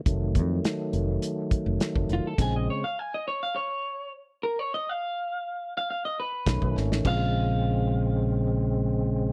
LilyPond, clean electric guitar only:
\new Staff \with { instrumentName = "Clean electric guitar" } { \time 4/4 \key bes \minor \tempo 4 = 103 r2. r8 f'16 a'16 | aes''16 ees''16 des''16 f''16 aes''16 ees''16 des''16 f''16 des''4 r8 bes'16 des''16 | ees''16 f''4. f''16 f''16 ees''16 ces''4 r8 | f''1 | }